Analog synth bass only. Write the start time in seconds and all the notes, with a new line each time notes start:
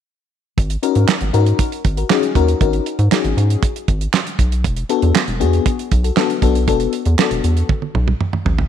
0.58 G#1
0.96 G#2
1.21 G#1
1.34 G#2
1.85 G#1
2.35 D#2
2.61 G#1
2.99 G#2
3.24 G#1
3.37 G#2
3.88 G#1
4.39 B1
4.64 E1
5.03 E2
5.28 E1
5.41 E2
5.92 B1
6.42 B1
6.68 E1
7.06 E2
7.31 E1
7.44 E2
7.95 B1
8.45 A1